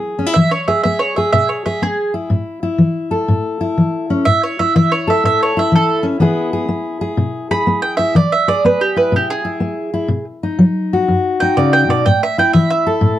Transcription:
Already playing: steel-string acoustic guitar B3 E4 G#4
0.19 steel-string acoustic guitar C#4
0.26 steel-string acoustic guitar E4
0.34 steel-string acoustic guitar E3, mandolin E5
0.51 mandolin C#5
0.68 steel-string acoustic guitar G#4, mandolin E5
0.83 steel-string acoustic guitar B3, mandolin E5
0.99 mandolin C#5
1.16 steel-string acoustic guitar G#4, mandolin E5
1.33 steel-string acoustic guitar B2, mandolin E5
1.49 mandolin C#5
1.66 steel-string acoustic guitar G#4, mandolin E5
1.82 steel-string acoustic guitar B3, mandolin G#4
2.14 steel-string acoustic guitar E4
2.30 steel-string acoustic guitar A2
2.63 steel-string acoustic guitar E4
2.78 steel-string acoustic guitar E3
3.11 steel-string acoustic guitar A4
3.28 steel-string acoustic guitar A2
3.61 steel-string acoustic guitar E4
3.77 steel-string acoustic guitar E3
4.10 steel-string acoustic guitar C#4
4.25 steel-string acoustic guitar A2, mandolin E5
4.43 mandolin C#5
4.59 steel-string acoustic guitar E4, mandolin E5
4.76 steel-string acoustic guitar E3, mandolin E5
4.92 mandolin C#5
5.07 steel-string acoustic guitar A4, mandolin E5
5.24 steel-string acoustic guitar A2, mandolin E5
5.43 mandolin C#5
5.57 steel-string acoustic guitar E4, mandolin E5
5.72 steel-string acoustic guitar E3, mandolin A4
6.03 steel-string acoustic guitar C#4
6.20 steel-string acoustic guitar E3 B3 E4 G#4
6.53 steel-string acoustic guitar G#4
6.69 steel-string acoustic guitar B3
7.01 steel-string acoustic guitar G#4
7.17 steel-string acoustic guitar B2
7.51 steel-string acoustic guitar G#4, mandolin B5
7.67 steel-string acoustic guitar B3
7.82 mandolin G5
7.97 steel-string acoustic guitar E4, mandolin E5
8.15 steel-string acoustic guitar E3, mandolin D5
8.32 mandolin E5
8.48 steel-string acoustic guitar G#4, mandolin D5
8.65 steel-string acoustic guitar B3, mandolin B4
8.81 mandolin G4
8.96 steel-string acoustic guitar E4, mandolin B4
9.12 steel-string acoustic guitar B2
9.16 mandolin G4
9.30 mandolin G#4
9.45 steel-string acoustic guitar E4
9.60 steel-string acoustic guitar B3
9.94 steel-string acoustic guitar E4
10.08 steel-string acoustic guitar B2
10.43 steel-string acoustic guitar D#4
10.59 steel-string acoustic guitar F#3
10.93 steel-string acoustic guitar F#4
11.08 steel-string acoustic guitar F#2
11.40 steel-string acoustic guitar D#4, mandolin G5
11.57 steel-string acoustic guitar C#3, mandolin D5
11.73 mandolin G5
11.88 steel-string acoustic guitar B2, mandolin D5
12.06 steel-string acoustic guitar A2, mandolin G5
12.23 mandolin E5
12.38 steel-string acoustic guitar E4, mandolin G5
12.53 steel-string acoustic guitar E3, mandolin E5
12.70 mandolin E5
12.87 steel-string acoustic guitar A4
13.01 steel-string acoustic guitar A2

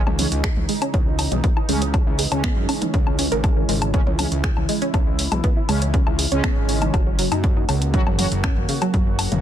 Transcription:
Already playing: analog synth pad C#3 E3 D#4
0.07 analog synth bass C#2, synth arpeggio sound C#4, mid tom, low woodblock
0.19 analog polysynth C#3 G#3 C#4, synth arpeggio sound C#4, open hi-hat, mid tom
0.32 analog synth bass C#2, closed hi-hat
0.44 synth arpeggio sound G#4, finger snap, kick, closed hi-hat, low woodblock
0.57 analog synth bass C#2, mid tom
0.69 synth arpeggio sound G#3, open hi-hat
0.82 synth arpeggio sound C#4, closed hi-hat, low woodblock
0.94 analog synth bass C#2, synth arpeggio sound C#4, kick, closed hi-hat
1.19 open hi-hat, low woodblock
1.32 analog synth bass B1, synth arpeggio sound G#3, closed hi-hat, mid tom
1.44 synth arpeggio sound B3, kick, closed hi-hat
1.57 synth arpeggio sound E4, low woodblock
1.69 analog synth bass C#2, analog polysynth C#3 G#3 C#4, synth arpeggio sound G#3, open hi-hat
1.82 synth arpeggio sound C#5, closed hi-hat
1.94 synth arpeggio sound C#4, kick, closed hi-hat, low woodblock
2.07 analog synth bass C#2, synth arpeggio sound E4
2.19 synth arpeggio sound G#4, open hi-hat
2.32 analog synth bass C#2, analog polysynth C#3 G#3 C#4, synth arpeggio sound C#5, closed hi-hat, low woodblock
2.44 synth arpeggio sound B3, finger snap, kick, closed hi-hat
2.57 analog synth bass F#2
2.69 synth arpeggio sound C#4, open hi-hat, low woodblock
2.82 synth arpeggio sound D#4, closed hi-hat, mid tom
2.94 analog synth bass C#2, synth arpeggio sound C#4, analog synth pad E4, kick, closed hi-hat
3.07 synth arpeggio sound C#4, low woodblock
3.19 synth arpeggio sound C#4, open hi-hat
3.32 analog synth bass G#1, synth arpeggio sound A#4, closed hi-hat
3.44 kick, closed hi-hat, low woodblock
3.57 synth arpeggio sound A#4
3.69 analog synth bass G#1, synth arpeggio sound G#3, open hi-hat
3.82 closed hi-hat, low woodblock
3.94 analog polysynth C#3 G#3 C#4, synth arpeggio sound C#4, kick, closed hi-hat
4.07 analog synth bass C#2, synth arpeggio sound C#4, mid tom
4.19 analog polysynth C#3 G#3 C#4, synth arpeggio sound C#4, open hi-hat, mid tom, low woodblock
4.32 analog synth bass C#2, closed hi-hat
4.44 synth arpeggio sound G#4, finger snap, kick, closed hi-hat
4.57 analog synth bass C#2, mid tom, low woodblock
4.69 synth arpeggio sound G#3, open hi-hat
4.82 synth arpeggio sound C#4, closed hi-hat
4.94 analog synth bass C#2, synth arpeggio sound C#4, kick, closed hi-hat, low woodblock
5.19 open hi-hat
5.32 analog synth bass B1, synth arpeggio sound G#3, closed hi-hat, mid tom, low woodblock
5.44 synth arpeggio sound B3, kick, closed hi-hat
5.57 synth arpeggio sound E4
5.69 analog synth bass C#2, analog polysynth C#3 G#3 C#4, synth arpeggio sound G#3, open hi-hat, low woodblock
5.82 synth arpeggio sound C#5, closed hi-hat
5.94 synth arpeggio sound C#4, kick, closed hi-hat
6.07 analog synth bass C#2, synth arpeggio sound E4, low woodblock
6.19 synth arpeggio sound G#4, open hi-hat
6.32 analog synth bass C#2, analog polysynth C#3 G#3 C#4, synth arpeggio sound C#5, closed hi-hat
6.44 synth arpeggio sound B3, finger snap, kick, closed hi-hat, low woodblock
6.57 analog synth bass G#1
6.69 synth arpeggio sound C#4, open hi-hat
6.82 synth arpeggio sound D#4, closed hi-hat, mid tom, low woodblock
6.94 analog synth bass F#1, analog synth pad C#3 A#3 F#4, synth arpeggio sound F#3, kick, closed hi-hat, low woodblock
7.07 synth arpeggio sound F#3
7.19 synth arpeggio sound F#3, open hi-hat
7.32 analog synth bass F#2, synth arpeggio sound D#4, closed hi-hat, low woodblock
7.44 kick, closed hi-hat
7.57 synth arpeggio sound D#4
7.69 analog synth bass C#2, synth arpeggio sound C#3, open hi-hat, low woodblock
7.82 closed hi-hat
7.94 analog polysynth F#3 C#4 F#4, synth arpeggio sound F#3, kick, closed hi-hat
8.07 analog synth bass F#1, synth arpeggio sound F#3, mid tom, low woodblock
8.19 analog polysynth F#3 C#4 F#4, synth arpeggio sound F#3, open hi-hat, mid tom
8.32 analog synth bass F#1, closed hi-hat
8.44 synth arpeggio sound C#4, finger snap, kick, closed hi-hat, low woodblock
8.57 analog synth bass F#1, mid tom
8.69 synth arpeggio sound C#3, open hi-hat
8.82 synth arpeggio sound F#3, closed hi-hat, low woodblock
8.94 analog synth bass F#1, synth arpeggio sound F#3, kick, closed hi-hat
9.19 open hi-hat, low woodblock
9.32 analog synth bass E1, synth arpeggio sound C#3, closed hi-hat, mid tom

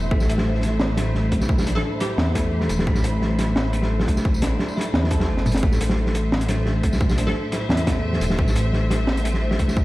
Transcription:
Already playing: string section A2 A3 C5 E5, synth texture E4 E5
0.11 detuned saw bass A1, clean electric guitar A3, synth texture B5, kick
0.20 snare, tambourine
0.29 closed hi-hat
0.38 snare
0.55 snare
0.60 snare, closed hi-hat
0.66 snare
0.80 detuned saw bass A1, snare
0.97 clean electric guitar A3, snare, closed hi-hat
1.15 detuned saw bass A1, snare
1.32 detuned saw bass C2, kick, closed hi-hat
1.41 snare, tambourine
1.49 kick
1.58 snare, tambourine
1.66 detuned saw bass A1, clean electric guitar D4, closed hi-hat
1.75 synth pluck A4, snare
2.00 clean electric guitar E4, synth pluck G4, snare, closed hi-hat
2.18 detuned saw bass E2, snare
2.35 clean electric guitar A3, kick, snare, closed hi-hat
2.61 snare
2.69 detuned saw bass E1, closed hi-hat, tambourine
2.79 snare
2.87 detuned saw bass A1, clean electric guitar A3, kick
2.95 snare, tambourine
3.04 closed hi-hat
3.22 snare
3.39 snare, closed hi-hat
3.56 detuned saw bass A1, snare
3.73 clean electric guitar A3, closed hi-hat
3.82 snare
3.90 detuned saw bass A1
4.00 snare
4.08 detuned saw bass C2, kick, closed hi-hat
4.17 snare, tambourine
4.25 kick
4.34 tambourine
4.42 detuned saw bass A1, clean electric guitar D4, snare, closed hi-hat
4.59 snare
4.68 tambourine
4.77 clean electric guitar E4, snare
4.81 closed hi-hat
4.94 detuned saw bass E2, snare
5.04 snare
5.11 clean electric guitar A4, kick, closed hi-hat
5.20 snare
5.28 detuned saw bass G1, clean electric guitar A3
5.37 snare
5.46 clean electric guitar A3, closed hi-hat, mid tom, tambourine
5.52 snare, closed hi-hat
5.57 closed hi-hat
5.63 detuned saw bass A1, string section A2, clean electric guitar A3, kick
5.72 string section C5, snare, tambourine
5.78 string section A3, closed hi-hat
5.89 snare
6.04 string section E5, snare
6.15 closed hi-hat
6.32 detuned saw bass A1, snare
6.36 snare
6.38 snare, closed hi-hat
6.49 clean electric guitar A3, snare, closed hi-hat
6.66 detuned saw bass A1, snare
6.83 detuned saw bass C2, kick, closed hi-hat
6.93 snare, tambourine
7.01 kick
7.09 snare, tambourine
7.18 detuned saw bass A1, clean electric guitar D4, closed hi-hat
7.27 synth pluck A4, snare
7.52 clean electric guitar E4, snare, closed hi-hat
7.69 detuned saw bass E2, snare
7.77 closed hi-hat
7.87 clean electric guitar A3, kick, snare, closed hi-hat
8.13 snare
8.21 detuned saw bass E1, closed hi-hat, tambourine
8.30 snare
8.39 detuned saw bass A1, clean electric guitar A3, kick
8.48 snare, tambourine
8.56 closed hi-hat
8.73 snare
8.90 snare, closed hi-hat
9.07 detuned saw bass A1, snare
9.17 closed hi-hat
9.25 clean electric guitar A3, closed hi-hat
9.34 snare
9.42 detuned saw bass A1
9.51 snare
9.59 detuned saw bass C2, kick, closed hi-hat
9.68 snare, tambourine
9.77 kick

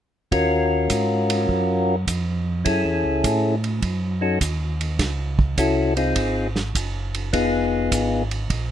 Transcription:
0.31 tonewheel organ D#2 C#4 F4 F#4 A#4, kick, ride
0.90 tonewheel organ G#2, kick, hi-hat pedal, ride
1.30 ride
1.49 tonewheel organ F#2, kick
2.07 tonewheel organ F2, kick, hi-hat pedal, ride
2.65 tonewheel organ F#2 C#4 E4 G#4 A4, kick, ride
2.85 tonewheel organ E2
3.04 tonewheel organ C#2
3.24 tonewheel organ A2, kick, hi-hat pedal, ride
3.64 ride
3.82 tonewheel organ F#2, kick, ride
4.21 tonewheel organ C#4 D#4 F#4 A4
4.41 tonewheel organ D#2, kick, hi-hat pedal, ride
4.81 ride
4.99 tonewheel organ C#2, kick, snare, ride
5.39 kick
5.57 tonewheel organ C2 C#4 E4 F#4 A4, kick, hi-hat pedal, ride
5.96 tonewheel organ C4 D#4 F4 G#4, ride
6.16 tonewheel organ G#1, kick, ride
6.56 snare
6.75 tonewheel organ F#1, kick, hi-hat pedal, ride
7.15 ride
7.33 tonewheel organ F1 B3 D#4 F4 G#4, kick, ride
7.91 tonewheel organ G#1, kick, hi-hat pedal, ride
8.31 ride
8.50 tonewheel organ A#1, kick, ride

